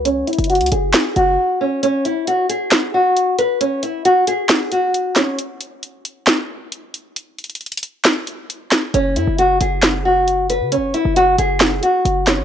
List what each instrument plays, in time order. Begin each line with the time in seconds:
Already playing: 808-style bass C#2
0.05 nylon-string guitar C#4, closed hi-hat
0.27 nylon-string guitar E4, closed hi-hat
0.33 closed hi-hat
0.39 808-style bass F#1, closed hi-hat
0.44 closed hi-hat
0.50 nylon-string guitar F#4, closed hi-hat
0.55 closed hi-hat
0.61 808-style bass C#2, closed hi-hat
0.66 closed hi-hat
0.72 808-style bass F#1, nylon-string guitar G#4, closed hi-hat
0.94 snare, clap, closed hi-hat
1.16 808-style bass F#1, nylon-string guitar F#4, closed hi-hat
1.61 nylon-string guitar C#4
1.83 nylon-string guitar C#4, closed hi-hat
2.05 nylon-string guitar E4, closed hi-hat
2.27 nylon-string guitar F#4, closed hi-hat
2.49 nylon-string guitar G#4, closed hi-hat
2.71 snare, clap, closed hi-hat
2.94 nylon-string guitar F#4
3.17 closed hi-hat
3.39 nylon-string guitar B4, closed hi-hat
3.61 nylon-string guitar C#4, closed hi-hat
3.83 nylon-string guitar E4, closed hi-hat
4.05 nylon-string guitar F#4, closed hi-hat
4.27 nylon-string guitar G#4, closed hi-hat
4.49 snare, clap, closed hi-hat
4.72 nylon-string guitar F#4, closed hi-hat
4.94 closed hi-hat
5.16 nylon-string guitar C#4, snare, clap, closed hi-hat
5.39 closed hi-hat
5.61 closed hi-hat
5.83 closed hi-hat
6.05 closed hi-hat
6.27 snare, clap, closed hi-hat
6.72 closed hi-hat
6.94 closed hi-hat
7.16 closed hi-hat
7.38 closed hi-hat
7.44 closed hi-hat
7.50 closed hi-hat
7.55 closed hi-hat
7.61 closed hi-hat
7.66 closed hi-hat
7.72 closed hi-hat
7.77 closed hi-hat
7.83 closed hi-hat
8.05 snare, clap, closed hi-hat
8.27 closed hi-hat
8.50 closed hi-hat
8.71 snare, clap, closed hi-hat
8.94 808-style bass F#1, nylon-string guitar C#4, closed hi-hat
9.16 808-style bass F#2, nylon-string guitar E4, closed hi-hat
9.27 808-style bass F#1
9.38 nylon-string guitar F#4, closed hi-hat
9.61 808-style bass F#1, nylon-string guitar G#4, closed hi-hat
9.83 snare, clap, closed hi-hat
10.05 nylon-string guitar F#4
10.28 closed hi-hat
10.50 nylon-string guitar B4, closed hi-hat
10.61 808-style bass C#3
10.72 nylon-string guitar C#4, closed hi-hat
10.77 808-style bass F#1
10.94 nylon-string guitar E4, closed hi-hat
11.05 808-style bass F#1
11.16 nylon-string guitar F#4, closed hi-hat
11.38 808-style bass F#1, nylon-string guitar G#4, closed hi-hat
11.60 snare, clap, closed hi-hat
11.83 nylon-string guitar F#4, closed hi-hat
12.05 808-style bass F#1, closed hi-hat
12.27 nylon-string guitar C#4, snare, clap, closed hi-hat
12.38 808-style bass A1